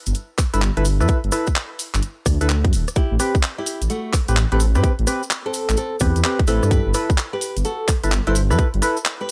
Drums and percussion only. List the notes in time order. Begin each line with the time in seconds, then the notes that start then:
0.06 closed hi-hat, cabasa
0.15 closed hi-hat, cabasa
0.38 kick, cross-stick, clap, open hi-hat, cabasa
0.54 closed hi-hat, cabasa
0.62 clap, cabasa
0.77 closed hi-hat
0.85 open hi-hat, cabasa
1.01 cross-stick, cabasa
1.08 kick, closed hi-hat, cabasa
1.24 closed hi-hat
1.32 cross-stick, open hi-hat, cabasa
1.47 kick, cabasa
1.56 clap, cabasa
1.79 open hi-hat, cabasa
1.94 clap, closed hi-hat, cabasa
2.03 closed hi-hat, cabasa
2.26 kick, cross-stick, open hi-hat, cabasa
2.41 closed hi-hat, cabasa
2.49 clap, cabasa
2.65 kick, closed hi-hat
2.73 open hi-hat, cabasa
2.88 cross-stick, closed hi-hat, cabasa
2.96 kick, closed hi-hat, cabasa
3.20 cross-stick, open hi-hat, cabasa
3.35 kick, cabasa
3.43 clap, cabasa
3.66 open hi-hat, cabasa
3.82 closed hi-hat, cabasa
3.90 closed hi-hat, cabasa
4.13 kick, cross-stick, clap, open hi-hat, cabasa
4.28 closed hi-hat, cabasa
4.37 clap, cabasa
4.52 closed hi-hat
4.60 open hi-hat, cabasa
4.75 cross-stick, cabasa
4.84 kick, closed hi-hat, cabasa
4.99 closed hi-hat
5.07 cross-stick, open hi-hat, cabasa
5.23 cabasa
5.31 clap, cabasa
5.54 open hi-hat, cabasa
5.69 clap, closed hi-hat, cabasa
5.77 closed hi-hat, cabasa
6.00 kick, cross-stick, open hi-hat, cabasa
6.16 closed hi-hat, cabasa
6.24 clap, cabasa
6.39 kick, closed hi-hat
6.47 open hi-hat, cabasa
6.63 cross-stick, cabasa
6.71 kick, closed hi-hat, cabasa
6.94 cross-stick, open hi-hat, cabasa
7.10 kick, cabasa
7.18 clap, cabasa
7.41 open hi-hat, cabasa
7.57 closed hi-hat, cabasa
7.65 closed hi-hat, cabasa
7.88 kick, cross-stick, clap, open hi-hat, cabasa
8.04 closed hi-hat, cabasa
8.12 clap, cabasa
8.27 closed hi-hat
8.35 open hi-hat, cabasa
8.50 cross-stick, cabasa
8.59 kick, closed hi-hat, cabasa
8.74 closed hi-hat
8.82 cross-stick, open hi-hat, cabasa
8.97 cabasa
9.05 clap, cabasa